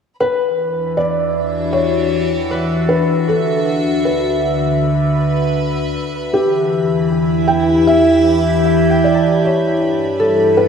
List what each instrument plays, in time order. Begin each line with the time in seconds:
0.19 synth drone E2, ambient pad E3, harp B4, violin section B4 B5, felt piano B4
0.49 ambient pad D4
0.63 ambient pad E5
0.97 felt piano D5
1.03 ambient pad F#4
1.48 ambient pad G4
1.73 felt piano C#5
2.51 harp B4
2.89 felt piano B4
3.26 synth drone D2, ambient pad D3, felt piano A4
4.05 felt piano B4
4.35 ambient pad B4
6.33 synth drone E2, ambient pad E3, felt piano G4
6.74 ambient pad E4
7.24 ambient pad G4 E5
7.48 felt piano G5
7.87 felt piano E5
8.65 harp E5
8.90 harp G5
9.04 felt piano D5
9.14 harp A5
9.43 synth drone G2, ambient pad G3, felt piano C#5
9.66 ambient pad D4
10.12 ambient pad A4 B4
10.20 harp A4
10.57 felt piano B4